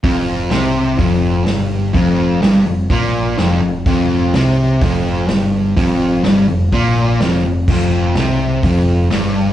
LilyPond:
<<
  \new Staff \with { instrumentName = "Distorted electric guitar" } { \clef bass \time 4/4 \key c \dorian \tempo 4 = 126 f,4 c4 f,4 g,4 | f,4 g,8 f,8 bes,4 f,8 f,8 | f,4 c4 f,4 g,4 | f,4 g,8 f,8 bes,4 f,8 f,8 |
f,4 c4 f,4 g,4 | }
  \new Staff \with { instrumentName = "Picked electric bass" } { \clef bass \time 4/4 \key c \dorian f,,4 c,4 f,,4 g,,4 | f,,4 g,,8 f,,8 bes,,4 f,,8 f,,8 | f,,4 c,4 f,,4 g,,4 | f,,4 g,,8 f,,8 bes,,4 f,,8 f,,8 |
f,,4 c,4 f,,4 g,,4 | }
  \new DrumStaff \with { instrumentName = "Drums" } \drummode { \time 4/4 <hho bd>4 <hho sn>4 <hho bd>4 <hho sn>4 | <hho bd>4 <hho sn>4 <hho bd>4 <hho sn>4 | <hho bd>4 <hho sn>4 <hho bd>4 <hho sn>4 | <hho bd>4 <hho sn>4 <hho bd>4 <hho sn>4 |
<cymc bd>4 <hho sn>4 <hho bd>4 <hho sn>4 | }
>>